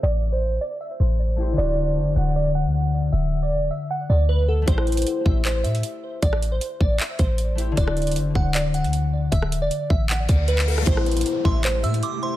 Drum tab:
HH |--------------------------------|--------------------------------|--------------------------------|x---xxxxx-------x---x-x-x-------|
CP |--------------------------------|--------------------------------|--------------------------------|----------------x---------------|
SD |--------------------------------|--------------------------------|--------------------------------|--r-----------------------------|
BD |--------------------------------|--------------------------------|--------------------------------|o-----------o-------------------|

HH |x---x---x-------x---x---x---x---|x---xxxxx-------x---x-x-x-------|x---x---x-------x---x---x---o---|x---xxxxx-------x---x-x-x-------|
CP |----------------x---------------|----------------x---------------|----------------x---------x-----|----------------x---------------|
SD |--r-----------------------------|--r-----------------------------|--r---------------------------r-|--r-----------------------------|
BD |o-----------o-------o-----------|o-----------o-------------------|o-----------o-------o-----------|o-----------o-------------------|